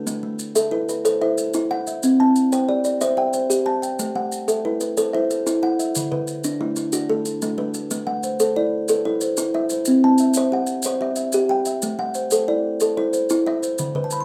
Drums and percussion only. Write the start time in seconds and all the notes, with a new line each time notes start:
0.07 maracas
0.39 maracas
0.56 maracas
0.89 maracas
1.05 maracas
1.38 maracas
1.54 maracas
1.87 maracas
2.03 maracas
2.36 maracas
2.52 maracas
2.84 maracas
3.01 maracas
3.33 maracas
3.50 maracas
3.83 maracas
3.99 maracas
4.32 maracas
4.48 maracas
4.81 maracas
4.97 maracas
5.31 maracas
5.47 maracas
5.80 maracas
5.95 maracas
6.27 maracas
6.44 maracas
6.76 maracas
6.92 maracas
7.25 maracas
7.42 maracas
7.74 maracas
7.91 maracas
8.23 maracas
8.40 maracas
8.88 maracas
9.21 maracas
9.37 maracas
9.69 maracas
9.85 maracas
10.18 maracas
10.34 maracas
10.67 maracas
10.82 maracas
11.16 maracas
11.32 maracas
11.65 maracas
11.82 maracas
12.14 maracas
12.31 maracas
12.80 maracas
13.13 maracas
13.30 maracas
13.63 maracas
13.78 maracas
14.10 maracas